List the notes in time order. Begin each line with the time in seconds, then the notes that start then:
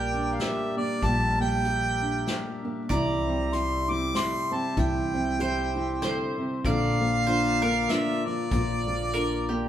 Already playing: A#1 A#2 G3 A#3 G4 A#4 D5 G5
0.14 D4
0.34 F5
0.40 G4 E5, snare, closed hi-hat
0.77 A#3 D4 D5
1.02 A#1 A#2 G3 G4 E5 A5, kick, closed hi-hat
1.39 G3 A#3 G5
1.65 G4, closed hi-hat
2.02 D4
2.27 G4, snare, closed hi-hat
2.65 A#3 D4
2.89 C2 C3 E3 E4 G4 D5 A#5 C6, kick, closed hi-hat
3.27 G3 C4
3.53 E4 G4 C6, closed hi-hat
3.88 C4 E4 D6
4.15 E4 G4 C6, snare, closed hi-hat
4.51 C4 A5
4.77 C2 C3 E3 E4 G5, kick, closed hi-hat
5.14 G3 C4
5.39 E4 G4 C5, closed hi-hat
5.75 C4 E4
6.02 D3 G4 C5, snare, closed hi-hat
6.38 C3 C4
6.65 A#1 A#2 D3 F3 A#3 D4 F4 D5 F5 A#5, kick, closed hi-hat
7.01 F3 A#3
7.27 D4 F4 C5, closed hi-hat
7.62 A#3 D4 A#4
7.89 D4 F4 E5, snare, closed hi-hat
8.25 F3 D4 D5
8.51 A#1 A#2 F3 F4, kick, closed hi-hat
8.87 F3 A#3
9.14 D4 F4 A#4, closed hi-hat
9.49 A#3 D4 G4